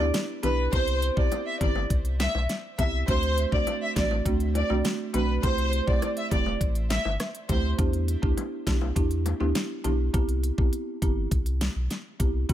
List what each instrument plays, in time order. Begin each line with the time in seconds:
0.00 sub bass D2, marimba B3 D4 E4 G4
0.14 snare, closed hi-hat
0.43 sub bass B1, marimba B3 D4 E4 G4, violin section B4, closed hi-hat, low bongo
0.72 sub bass C2, marimba B3 C4 E4 G4, violin section C5, kick, closed hi-hat
0.87 closed hi-hat
1.02 closed hi-hat
1.16 sub bass B1, marimba B3 C4 E4 G4, violin section D5, kick
1.32 closed hi-hat, high bongo
1.46 violin section E5
1.60 sub bass G1, marimba B3 C4 E4 G4, violin section D5, kick, closed hi-hat, low bongo
1.75 high bongo
1.90 sub bass C2, kick, closed hi-hat
2.05 closed hi-hat
2.20 violin section E5, snare, closed hi-hat, high bongo
2.35 sub bass B1, high bongo
2.49 snare, closed hi-hat
2.78 sub bass C2, marimba B3 C4 E4 G4, violin section E5, kick, closed hi-hat, low bongo
3.08 sub bass D2, marimba A3 C4 D4 F#4, violin section C5, kick, closed hi-hat
3.23 closed hi-hat
3.38 closed hi-hat
3.52 sub bass C2, marimba A3 C4 D4 F#4, violin section D5, kick
3.67 closed hi-hat, high bongo
3.82 violin section E5
3.96 sub bass A1, marimba A3 C4 D4 F#4, violin section D5, kick, snare, closed hi-hat, low bongo
4.11 high bongo
4.25 sub bass D2, marimba A3 C4 D4 F#4, kick, closed hi-hat
4.40 closed hi-hat
4.55 violin section D5, closed hi-hat, high bongo
4.69 sub bass C2, marimba A3 C4 D4 F#4, high bongo
4.85 snare, closed hi-hat
5.14 sub bass B1, marimba A3 C4 D4 F#4, violin section B4, closed hi-hat, low bongo
5.43 sub bass C2, marimba A3 C4 E4 G4, violin section C5, kick, closed hi-hat
5.58 closed hi-hat
5.73 closed hi-hat
5.87 sub bass B1, marimba A3 C4 E4 G4, violin section D5, kick
6.02 cross-stick, closed hi-hat, high bongo
6.17 violin section E5, closed hi-hat
6.31 sub bass E1, marimba A3 C4 E4 G4, violin section D5, kick, closed hi-hat, low bongo
6.46 high bongo
6.61 sub bass A1, kick, closed hi-hat
6.75 closed hi-hat
6.90 violin section E5, snare, closed hi-hat, high bongo
7.05 sub bass G1, high bongo
7.20 cross-stick, snare, closed hi-hat
7.35 closed hi-hat
7.49 sub bass D2, marimba A3 C4 E4 G4, violin section C5, kick, closed hi-hat, low bongo
7.78 sub bass E2, marimba B3 D4 E4 G4, kick, closed hi-hat
7.93 closed hi-hat
8.08 closed hi-hat
8.22 sub bass D2, marimba B3 D4 E4 G4, kick
8.37 closed hi-hat, high bongo
8.66 sub bass B1, marimba B3 D4 E4 G4, kick, snare, closed hi-hat, low bongo
8.81 high bongo
8.96 sub bass E2, marimba B3 D4 E4 G4, kick, closed hi-hat
9.11 closed hi-hat
9.26 closed hi-hat, high bongo
9.40 sub bass D2, marimba B3 D4 E4 G4, high bongo
9.55 snare, closed hi-hat
9.84 sub bass B1, marimba B3 D4 E4 G4, closed hi-hat, low bongo
10.14 sub bass C2, marimba B3 C4 E4 G4, kick, closed hi-hat
10.29 closed hi-hat
10.43 closed hi-hat
10.58 sub bass B1, marimba B3 C4 E4 G4, kick
10.73 closed hi-hat
11.02 sub bass G1, marimba B3 C4 E4 G4, kick, closed hi-hat
11.31 sub bass C2, kick, closed hi-hat
11.46 closed hi-hat
11.61 snare, closed hi-hat
11.76 sub bass B1
11.90 snare, closed hi-hat
12.20 sub bass C2, marimba B3 C4 E4 G4, kick, closed hi-hat
12.49 marimba A3 C4 D4 F#4, kick, closed hi-hat